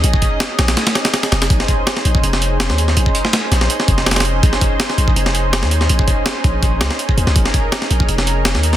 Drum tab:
HH |x---x---x---x-x-x-x-x-x-x-x-x-x-|x---x---x---x---x---x---x---x---|x---x---x---x---x---x---xxxxx---|x---x---x---x---x---x---x---x---|
SD |--------o---o-o-o-o-o-o-o-o-o-o-|--o-----o-o-------o-----o-o---o-|------o-o---o-o---o---o-oooo----|--o-----o-o-------o-----o-o---o-|
BD |--o-o---------------------------|o---o---------o-----------------|--o-----------------o-----------|o---o---------o-----------------|

HH |x---x---x---x---x---x---x---x---|x---x---x---x---x---x---x---x---|
SD |--------o-----------o-o-------o-|--o-----o-o-------o-----o-o---o-|
BD |--o-o-------o---o---------o-----|o---o---------o-----------------|